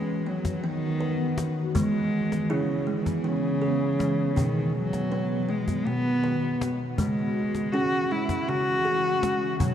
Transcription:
Already playing: ambient pad D#3 B3 F#4, cello G#3, kalimba B3 B4
0.27 cello F#3, kalimba B3
0.45 cajon bass, cajon slap
0.64 cello D#3, kalimba B3
1.01 kalimba B4
1.38 kalimba B3, cajon slap
1.75 kalimba E3 G#3, ambient pad E3 B3 G#4, cello G#3, cajon bass
2.32 cajon slap
2.50 cello C#3, kalimba E4 G#4
2.87 cello E3, kalimba G#3
3.06 cajon bass, cajon slap
3.24 cello C#3, kalimba E3
3.62 kalimba G#4
3.99 kalimba G#3, cajon slap
4.36 kalimba B2 B3, ambient pad D#3 B3 F#4, cello D#3, cajon bass
4.75 cello F#3
4.93 cajon slap
5.12 kalimba B3 B4
5.49 cello G#3, kalimba B3, cajon slap
5.68 cajon bass, cajon slap
5.86 kalimba B2, cello B3
6.24 kalimba B4
6.61 kalimba B3, cajon slap
6.80 cajon slap
6.98 kalimba C#3 G#3, ambient pad E3 C#4 G#4, cello G#3, cajon bass
7.55 cajon slap
7.72 kalimba C#4 G#4, cello F#4
8.11 kalimba G#3, cello E4
8.29 cajon bass, cajon slap
8.48 kalimba C#3, cello F#4
8.85 kalimba G#4
9.23 kalimba G#3, cajon slap
9.60 kalimba B2 B3, cello F#3, cajon bass

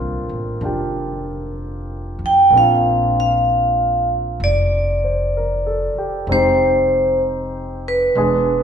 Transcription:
Already playing: grand piano A#3 C4 D4 F4 C5 D5 F5, vibraphone A#4
0.00 upright bass C2
0.29 upright bass A1
0.61 upright bass F1, grand piano D4 F4
0.65 grand piano G4
2.19 upright bass F2
2.26 vibraphone G5
2.50 upright bass A#1, grand piano A#3 C4
2.55 grand piano D4 F4, vibraphone F5
3.20 vibraphone F5
4.40 upright bass F1, vibraphone D5
5.04 grand piano C5
5.37 grand piano A#4
5.66 grand piano A4
5.95 grand piano G4, muted upright bass stroke
6.27 upright bass F1, grand piano G#3 C4
6.31 grand piano D#4 G4, vibraphone C5
7.88 vibraphone B4
8.15 upright bass E1, grand piano G#3 B3 D4 G#4

